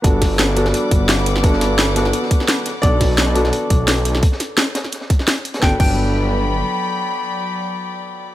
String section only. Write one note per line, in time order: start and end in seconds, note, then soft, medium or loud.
0.04 2.63 G3 medium
0.04 4.19 F#5 medium
0.04 4.19 B5 medium
0.04 4.19 D6 medium
2.66 4.21 A4 medium
5.62 8.35 F#3 medium
5.62 8.35 D5 medium
5.62 8.35 G5 medium
5.62 8.35 B5 loud